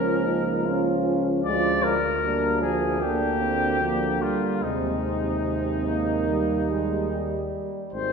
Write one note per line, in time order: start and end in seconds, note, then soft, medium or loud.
0.00 1.47 C#2 soft
0.00 1.45 F3 soft
0.00 0.68 A#3 soft
0.00 0.27 C#4 soft
0.00 1.05 A#4 medium
0.26 0.68 D#4 soft
0.66 1.44 C#4 soft
0.66 1.28 F4 soft
1.45 4.34 D2 medium
1.45 1.95 F3 soft
1.45 1.95 G#3 soft
1.45 1.95 F4 soft
1.45 1.84 D5 medium
1.83 2.60 A#4 medium
2.22 2.63 G3 soft
2.22 2.97 A#3 soft
2.22 2.98 D4 soft
2.61 3.03 F3 soft
2.61 3.00 G#4 medium
3.01 3.81 D3 soft
3.01 3.80 A#3 soft
3.01 3.43 D4 soft
3.01 4.24 G4 medium
3.42 3.84 C4 soft
3.81 4.65 D3 soft
3.81 4.24 F3 soft
3.81 4.65 A#3 soft
4.22 4.65 G3 soft
4.22 4.64 F4 medium
4.63 7.57 D#2 soft
4.63 6.29 C3 soft
4.63 6.29 G#3 soft
4.63 5.37 C4 soft
4.63 7.52 D#4 medium
5.46 5.88 C4 soft
5.86 6.71 A#3 soft
6.27 7.61 D#3 soft
6.27 7.61 G3 soft
6.70 7.12 G#3 soft
7.11 7.94 G3 soft
7.93 8.13 G#1 soft
7.93 8.13 D#3 soft
7.93 8.13 G#3 soft
7.93 8.13 C4 soft
7.93 8.13 C5 medium